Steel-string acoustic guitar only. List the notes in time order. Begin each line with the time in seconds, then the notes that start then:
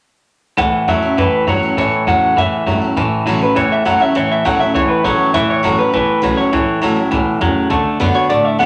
0.58 A2
0.88 E3 A3 C#4 E4
1.02 C#4 E4
1.18 E2
1.47 E3 A3 C#4 E4
1.63 C#4 E4
1.78 A2
2.07 E3 A3 C#4 E4
2.38 E2
2.67 E3 A3 C#4 E4
2.81 C#4 E4
2.97 A2
3.27 E3 A3 C#4 E4
3.42 C#4 E4
3.56 E2
3.85 E3 A3 C#4 E4
4.00 C#4 E4
4.15 A2
4.45 E3 A3 C#4 E4
4.60 C#4 E4
4.76 E2
5.04 E3 A3 C#4 E4
5.34 A2
5.63 E3 A3 C#4 E4
5.78 C#4 E4
5.93 E2
6.22 E3 A3 C#4 E4
6.38 C#4 E4
6.53 A2
6.82 E3 A3 C#4 E4
6.96 C#4 E4
7.11 B2
7.41 C#3
7.70 D3
8.00 D3 A3 D4 F#4
8.14 D4 F#4
8.30 A2
8.59 D3 A3 D4 F#4